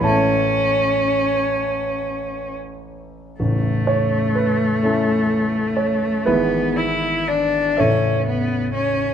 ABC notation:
X:1
M:6/8
L:1/16
Q:3/8=41
K:A
V:1 name="Cello"
C8- C z3 | A,12 | B,2 E2 D2 C2 B,2 C2 |]
V:2 name="Grand piano"
[Aa]6 z6 | z2 c2 B2 [CEA]4 c2 | [EGB]6 [Ace]6 |]
V:3 name="Grand piano" clef=bass
[A,,,A,CE]12 | [A,,,,A,,,]6 A,6 | [G,,,G,,E,B,]6 [A,,,,A,,,E,A,C]6 |]